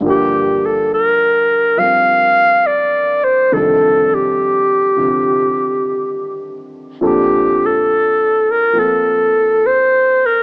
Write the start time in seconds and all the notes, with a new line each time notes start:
0.01 G2 D3 F3
0.05 A#3 G4
0.10 G4
0.66 A4
0.93 A#4
1.77 F3 G3 C4 A#4 F5
2.66 D5
3.24 C5
3.52 F2 C3 D#3 G3 D4 A4
4.14 G4
4.96 C3 D3 F3 C4 G4
7.01 A#2 F3 C4 D4 A4
7.06 G4
7.66 A4
8.51 A#4
8.73 F3 A#3 C4 F4
8.79 A4
9.66 C5
10.26 A#4